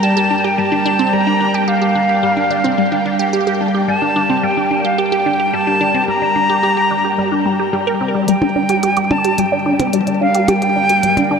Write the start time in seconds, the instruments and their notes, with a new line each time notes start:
Already playing: string machine G3 G4 A#4 D5, synth texture G5
0.03 synth arpeggio sound G4, flute A5
0.17 synth arpeggio sound G4
0.30 synth arpeggio sound D4
0.44 synth arpeggio sound G4, flute G5
0.58 synth arpeggio sound G3, flute A5
0.72 synth arpeggio sound D4
0.86 synth arpeggio sound D4
0.99 synth arpeggio sound C4
1.13 synth arpeggio sound G3, flute A#5
1.27 synth arpeggio sound D4
1.41 synth arpeggio sound D4
1.54 synth arpeggio sound G4, flute G5
1.68 synth arpeggio sound G4, flute F5
1.82 synth arpeggio sound G4
1.95 synth arpeggio sound D4
2.09 synth arpeggio sound G4
2.23 synth arpeggio sound G3
2.37 synth arpeggio sound D4
2.51 synth arpeggio sound D4
2.64 synth arpeggio sound C4
2.78 synth arpeggio sound G3
2.92 synth arpeggio sound D4
3.06 synth arpeggio sound D4
3.19 synth arpeggio sound G4
3.33 synth arpeggio sound G4
3.47 synth arpeggio sound G4
3.61 synth arpeggio sound D4
3.75 synth arpeggio sound G4
3.88 synth arpeggio sound G3, flute A5
4.02 synth arpeggio sound D4
4.16 synth arpeggio sound D4
4.30 synth arpeggio sound C4
4.43 synth arpeggio sound G3, flute G5
4.57 synth arpeggio sound D4
4.71 synth arpeggio sound D4
4.85 synth arpeggio sound G4, flute F5
4.98 synth arpeggio sound G4, flute G5
5.12 synth arpeggio sound G4
5.26 synth arpeggio sound D4
5.40 synth arpeggio sound G4
5.53 synth arpeggio sound G3, flute A5
5.67 synth arpeggio sound D4
5.81 synth arpeggio sound D4
5.94 synth arpeggio sound C4
6.08 synth arpeggio sound G3, flute A#5
6.22 synth arpeggio sound D4
6.36 synth arpeggio sound D4
6.49 synth arpeggio sound G4
6.63 synth arpeggio sound G4
6.77 synth arpeggio sound G4
6.91 synth arpeggio sound D4
7.05 synth arpeggio sound G4
7.18 synth arpeggio sound G3
7.32 synth arpeggio sound D4
7.46 synth arpeggio sound G3
7.59 synth arpeggio sound G4
7.73 synth arpeggio sound G3
7.87 synth arpeggio sound A#4
8.01 synth arpeggio sound C4
8.15 synth arpeggio sound G3
8.28 synth arpeggio sound G3, string machine G3, flute G5, synth texture E6, closed hi-hat
8.42 synth arpeggio sound D4, percussion blips
8.49 string machine G4
8.56 synth arpeggio sound D4
8.69 synth arpeggio sound G4, closed hi-hat
8.83 synth arpeggio sound G4, closed hi-hat
8.97 synth arpeggio sound G4, closed hi-hat
9.11 synth arpeggio sound D4, flute A5, percussion blips
9.25 synth arpeggio sound G4, closed hi-hat
9.38 synth arpeggio sound G3, flute G5, closed hi-hat
9.47 string machine A#4 D5
9.52 synth arpeggio sound D4
9.66 synth arpeggio sound D4
9.80 synth arpeggio sound C4, closed hi-hat, percussion blips
9.93 synth arpeggio sound G3, closed hi-hat
10.07 synth arpeggio sound D4, closed hi-hat
10.21 synth arpeggio sound D4, flute F5
10.35 synth arpeggio sound G4, closed hi-hat
10.48 synth arpeggio sound G4, flute G5, closed hi-hat, percussion blips
10.62 synth arpeggio sound G4, closed hi-hat
10.76 synth arpeggio sound D4
10.89 synth arpeggio sound G4, closed hi-hat
11.03 synth arpeggio sound G3, closed hi-hat
11.17 synth arpeggio sound D4, closed hi-hat, percussion blips
11.31 synth arpeggio sound D4